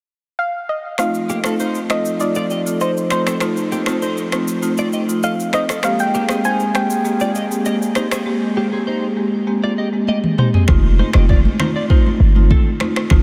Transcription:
0.39 F5
0.69 D#5
0.98 F3 A3 C4 D#4 F4 A4 F5, finger snap, cross-stick, shaker
1.14 shaker
1.30 A#3 G4, shaker
1.44 A3 C4 D#4 F4 A4, finger snap, cross-stick, shaker
1.60 D#4 C5, shaker
1.75 shaker
1.89 A3 C4 D#4 F4 D#5, finger snap, cross-stick, shaker
2.05 shaker
2.20 A3 C4 D#4 F4 D5, shaker
2.35 F4 D5, shaker
2.50 G4 D#5, shaker
2.66 A3 C4 D#4 F4, shaker
2.81 A4 C5 D#5, shaker
2.97 shaker
3.10 A3 C4 D#4 F4 C5, finger snap, cross-stick, shaker
3.27 C4 A4, finger snap, cross-stick, shaker
3.40 A3 C4 D#4 F4, finger snap, cross-stick, shaker
3.57 shaker
3.72 A#3 G4, shaker
3.86 A3 C4 D#4 F4 A4, finger snap, cross-stick, shaker
4.02 D#4 C5, shaker
4.17 shaker
4.32 A3 C4 D#4 F4, finger snap, cross-stick, shaker
4.48 shaker
4.62 A3 C4 D#4 F4, shaker
4.78 F4 D5, shaker
4.93 G4 D#5, shaker
5.08 A3 C4 D#4 F4, shaker
5.23 A4 D#5 F5, shaker
5.40 shaker
5.53 D#4 C5 D#5, finger snap, cross-stick, shaker
5.69 C4 A4, finger snap, cross-stick, shaker
5.83 G#3 A#3 C4 G4 G#4 F5, finger snap, cross-stick, shaker
5.99 G5, shaker
6.14 A#3 G4, shaker
6.29 G#3 A#3 C4 G4 G#4, finger snap, cross-stick, shaker
6.45 D#4 C5 G#5, shaker
6.60 shaker
6.74 G#3 A#3 C4 G4 G5, finger snap, cross-stick, shaker
6.90 shaker
7.05 G#3 A#3 C4 G4, shaker
7.20 F4 D5, shaker
7.35 G4 D#5, shaker
7.51 G#3 A#3 C4 G4, shaker
7.66 G4 D#5, shaker
7.82 shaker
7.95 G#3 A#3 C4 D#4 G4 C5, finger snap, cross-stick, shaker
8.11 C4 G#4, finger snap, cross-stick, shaker
8.26 G#3 A#3 C4 G4
8.57 A#3 G4
8.72 G#3 A#3 C4 G4 G#4
8.87 D#4 C5
9.17 G#3 A#3 C4 G4
9.47 G#3 A#3 C4 G4
9.64 F4 D5
9.78 G4 D#5
9.93 G#3 A#3 C4 G4
10.08 G4 D#5, high tom
10.24 mid tom
10.38 G#3 A#3 C4 D#4 G4 C5, mid tom
10.54 C4 G#4, floor tom
10.68 F1 A3 C4 D#4 F4, finger snap, kick, cross-stick, low conga
10.99 D#4 C5, high conga
11.13 F1 A3 C4 D#4 F4 G4 D#5, finger snap, cross-stick
11.29 F4 D5, kick, low conga
11.45 high conga
11.59 A3 C4 D#4 F4 C5, finger snap, cross-stick, high conga, low conga
11.76 F4 D5
11.89 A3 C4 D#4 F4 C5, kick
12.06 high conga
12.20 G1
12.35 A3 C4 D#4 F4, high conga
12.51 C4 A4, kick, high conga, low conga
12.80 A3 C4 D#4 F4, finger snap, cross-stick, high conga
12.96 finger snap, cross-stick
13.10 F1 A3 C4 D#4 F4, finger snap, kick, cross-stick, low conga

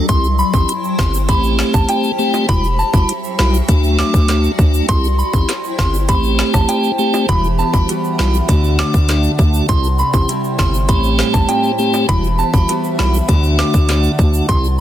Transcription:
0.09 C2 C4 E4 G4 C5 G5 C6, kick, closed hi-hat, shaker
0.24 shaker
0.39 B5, shaker
0.54 A1 C4 E4 G4 C6, kick, shaker
0.69 closed hi-hat, shaker
0.84 shaker
0.99 G1 C4 E4 G4 C6, kick, snare, shaker
1.14 shaker
1.28 A1 A3 C4 G4 A5 B5, kick, closed hi-hat, shaker
1.44 shaker
1.59 snare, shaker
1.74 A1 A5, kick, shaker
1.89 G5, closed hi-hat, high timbale, shaker
2.04 shaker
2.19 A3 C4 G4, shaker
2.34 high timbale, shaker
2.49 E1 F#3 G3 E4 F#4 E5 G5 B5, kick, closed hi-hat, shaker
2.64 shaker
2.79 A5, shaker
2.94 G1 G3 E4 F#4 B5, kick, shaker
3.09 closed hi-hat, shaker
3.24 shaker
3.39 B1 G3 E4 F#4 B5, snare, shaker
3.54 shaker
3.68 D2 A3 D4 F#4 D5 A5, kick, closed hi-hat, shaker
3.84 shaker
3.99 D6, snare, shaker
4.14 D2, kick, shaker
4.28 snare, closed hi-hat, shaker
4.44 shaker
4.58 D2 A3 D4 F#4, kick, shaker
4.74 shaker
4.88 C2 C4 E4 G4 C5 G5 C6, kick, closed hi-hat, shaker
5.04 shaker
5.19 B5, shaker
5.33 A1 C4 E4 G4 C6, kick, shaker
5.49 snare, closed hi-hat, shaker
5.64 shaker
5.78 G1 C4 E4 G4 C6, kick, snare, shaker
5.94 shaker
6.08 A1 A3 C4 G4 C5 A5 B5, kick, closed hi-hat, shaker
6.24 shaker
6.39 snare, shaker
6.54 A1 A5, kick, cross-stick, shaker
6.69 G5, closed hi-hat, high timbale, shaker
6.84 shaker
6.99 A3 C4 G4, shaker
7.14 high timbale, shaker
7.28 E1 E3 G3 E4 F#4 E5 F#5 B5, kick, closed hi-hat, shaker
7.44 shaker
7.59 B3 A5, shaker
7.73 G1 G3 E4 F#4 B5, kick, shaker
7.89 G3 B3 F#4, closed hi-hat, shaker
8.04 shaker
8.19 B1 G3 E4 F#4 B5, snare, shaker
8.34 shaker
8.48 D2 D3 A3 D4 F#4 D5 A5, kick, closed hi-hat, shaker
8.64 shaker
8.79 A3 D6, snare, shaker
8.94 D2, kick, shaker
9.09 D4, snare, closed hi-hat, shaker
9.24 shaker
9.39 D2 A3 D4 F#4, kick, shaker
9.54 shaker
9.69 C2 C3 C4 E4 G4 C5 G5 C6, kick, closed hi-hat, shaker
9.84 shaker
9.99 C4 B5, shaker
10.14 A1 C4 E4 G4 C6, kick, shaker
10.29 G3 C4 E4, closed hi-hat, shaker
10.44 shaker
10.59 G1 C4 E4 G4 C6, kick, snare, shaker
10.74 shaker
10.88 A1 A2 A3 C4 G4 A5 B5, kick, closed hi-hat, shaker
11.04 shaker
11.19 G3, snare, shaker
11.34 A1 A5, kick, shaker
11.49 C4 G5, closed hi-hat, high timbale, shaker
11.64 shaker
11.79 A3 C4 G4, shaker
11.94 high timbale, shaker
12.09 E1 E3 G3 E4 F#4 E5 F#5 B5, kick, closed hi-hat, shaker
12.24 shaker
12.39 B3 A5, shaker
12.54 G1 G3 E4 F#4 B5, kick, shaker
12.69 G3 B3 F#4, closed hi-hat, shaker
12.84 shaker
12.99 B1 G3 E4 F#4 B5, snare, shaker
13.14 shaker
13.28 D2 D3 A3 D4 F#4 D5 A5, kick, closed hi-hat, shaker
13.44 shaker
13.59 A3 D6, snare, shaker
13.74 D2, kick, shaker
13.89 D4, snare, closed hi-hat, shaker
14.04 shaker
14.19 D2 A3 D4 F#4, kick, shaker
14.34 shaker
14.49 C2 C3 C4 E4 G4 E5 C6, kick, closed hi-hat, shaker
14.64 shaker

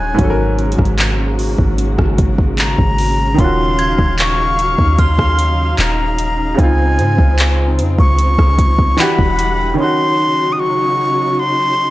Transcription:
Already playing: D#1 C#3 D#3 F#3 C#4 D#4 F4 F#4 G#5 F#6
0.14 G#2 F#3
0.19 G#1 G#3 A#3 C#4 F#4, kick, closed hi-hat
0.24 A4
0.30 A#4
0.59 closed hi-hat
0.72 closed hi-hat
0.79 G#1, kick, cross-stick
0.85 closed hi-hat
0.98 clap, closed hi-hat
1.39 open hi-hat
1.58 G#1, kick
1.78 closed hi-hat
1.98 G#1, kick, cross-stick
2.18 kick, closed hi-hat
2.38 kick
2.58 A#5, clap, closed hi-hat
2.78 G#1, kick
2.98 open hi-hat
3.34 D#3 C#4
3.38 D#1 F#3 D#4 F4 F5 C6, kick, closed hi-hat
3.44 F#4
3.79 G#6, closed hi-hat
3.99 D#1, kick
4.18 C#6, clap, closed hi-hat
4.59 closed hi-hat
4.79 D#2, kick
4.99 C6 F6, kick, closed hi-hat
5.19 kick, cross-stick
5.39 closed hi-hat
5.79 D#1 A#5, clap, closed hi-hat
6.18 closed hi-hat
6.54 C#3 C4
6.59 C#2 C4 D#4 F4 G#5, kick, closed hi-hat
6.64 F4
6.99 G#2, closed hi-hat
7.19 C#2, kick
7.38 clap, closed hi-hat
7.79 F2, closed hi-hat
7.99 C#2 C#6, kick
8.19 closed hi-hat
8.39 C#2, kick, cross-stick
8.59 kick, closed hi-hat
8.79 kick
8.97 D3 E3 G3 D4 E4 F#4 F#5 B5, clap, closed hi-hat
9.01 G4
9.19 E1, kick
9.39 closed hi-hat
9.74 D#3 C#4
9.79 C#3 F#3 D#4 F#4 C6
9.83 F#4
10.53 D#6
10.59 C#6
11.39 C6

